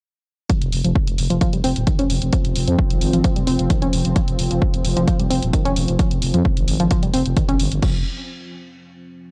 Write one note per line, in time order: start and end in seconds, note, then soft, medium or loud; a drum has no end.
0.49 0.53 F3 medium
0.49 7.87 F3 medium
0.49 7.87 C4 medium
0.49 kick loud
0.49 closed hi-hat medium
0.62 0.70 F1 medium
0.62 closed hi-hat medium
0.72 0.82 F1 loud
0.72 open hi-hat loud
0.84 0.93 F1 medium
0.84 0.91 F3 medium
0.84 closed hi-hat medium
0.95 kick loud
1.07 1.16 F1 medium
1.07 closed hi-hat medium
1.18 1.28 F1 loud
1.18 open hi-hat medium
1.30 1.39 F1 medium
1.30 1.34 F3 loud
1.30 closed hi-hat medium
1.41 1.51 F3 loud
1.41 kick loud
1.41 closed hi-hat medium
1.53 1.62 F1 medium
1.53 1.57 G3 medium
1.53 closed hi-hat medium
1.64 1.74 F1 medium
1.64 1.71 C4 loud
1.64 open hi-hat loud
1.76 1.85 D#1 medium
1.76 closed hi-hat medium
1.87 1.94 D#3 medium
1.87 kick loud
1.87 closed hi-hat medium
1.99 2.08 F1 medium
1.99 2.05 C#4 loud
1.99 closed hi-hat medium
2.10 2.20 F1 loud
2.10 open hi-hat medium
2.22 2.31 F1 medium
2.22 closed hi-hat medium
2.33 2.37 F3 medium
2.33 kick loud
2.33 closed hi-hat medium
2.45 2.54 F1 medium
2.45 closed hi-hat medium
2.56 2.65 F1 loud
2.56 open hi-hat loud
2.68 2.77 F2 medium
2.68 2.74 F3 medium
2.68 closed hi-hat medium
2.79 kick loud
2.90 2.99 G#1 medium
2.90 closed hi-hat medium
3.01 3.11 G#1 loud
3.01 open hi-hat medium
3.13 3.22 G#1 medium
3.13 3.17 F3 medium
3.13 closed hi-hat medium
3.24 3.34 F3 loud
3.24 kick loud
3.24 closed hi-hat medium
3.36 3.45 F1 medium
3.36 3.40 G3 medium
3.36 closed hi-hat soft
3.47 3.57 F1 medium
3.47 3.54 C4 loud
3.47 open hi-hat loud
3.59 3.68 F1 medium
3.59 closed hi-hat medium
3.70 3.77 D#3 medium
3.70 kick loud
3.70 closed hi-hat medium
3.82 3.91 F1 medium
3.82 3.88 C#4 loud
3.82 closed hi-hat medium
3.93 4.03 F1 loud
3.93 open hi-hat loud
4.05 4.14 F1 medium
4.05 closed hi-hat medium
4.16 4.20 F3 medium
4.16 kick loud
4.16 closed hi-hat medium
4.28 4.37 F1 medium
4.28 closed hi-hat medium
4.39 4.49 F1 loud
4.39 open hi-hat loud
4.51 4.60 F1 medium
4.51 4.57 F3 medium
4.51 closed hi-hat medium
4.62 kick loud
4.74 4.83 F1 medium
4.74 closed hi-hat medium
4.85 4.94 F1 loud
4.85 open hi-hat medium
4.96 5.06 F1 medium
4.96 5.00 F3 loud
4.96 closed hi-hat medium
5.08 5.18 F3 loud
5.08 kick loud
5.08 closed hi-hat medium
5.19 5.28 F1 medium
5.19 5.23 G3 medium
5.19 closed hi-hat medium
5.30 5.40 F1 medium
5.30 5.37 C4 loud
5.30 open hi-hat loud
5.42 5.51 D#1 medium
5.42 closed hi-hat medium
5.53 5.60 D#3 medium
5.53 kick loud
5.53 closed hi-hat medium
5.65 5.74 F1 medium
5.65 5.71 C#4 loud
5.65 closed hi-hat medium
5.76 5.86 F1 loud
5.76 open hi-hat loud
5.88 5.97 F1 medium
5.88 closed hi-hat soft
5.99 6.03 F3 medium
5.99 kick loud
5.99 closed hi-hat medium
6.11 6.20 F1 medium
6.11 closed hi-hat medium
6.22 6.32 F1 loud
6.22 open hi-hat loud
6.34 6.43 F2 medium
6.34 6.40 F3 medium
6.34 closed hi-hat soft
6.45 kick loud
6.57 6.66 G#1 medium
6.57 closed hi-hat medium
6.68 6.78 G#1 loud
6.68 open hi-hat loud
6.80 6.89 G#1 medium
6.80 6.84 F3 loud
6.80 closed hi-hat medium
6.91 7.01 F3 loud
6.91 kick loud
6.91 closed hi-hat medium
7.03 7.12 F1 medium
7.03 7.06 G3 medium
7.03 closed hi-hat soft
7.14 7.23 F1 medium
7.14 7.20 C4 loud
7.14 open hi-hat loud
7.25 7.34 F1 medium
7.25 closed hi-hat medium
7.36 7.43 D#3 medium
7.36 kick loud
7.36 closed hi-hat medium
7.49 7.57 G1 medium
7.49 7.55 C#4 loud
7.49 closed hi-hat medium
7.59 7.69 G1 loud
7.59 open hi-hat loud
7.71 7.80 G1 medium
7.71 closed hi-hat medium
7.82 8.04 F3 medium
7.82 kick loud
7.82 crash medium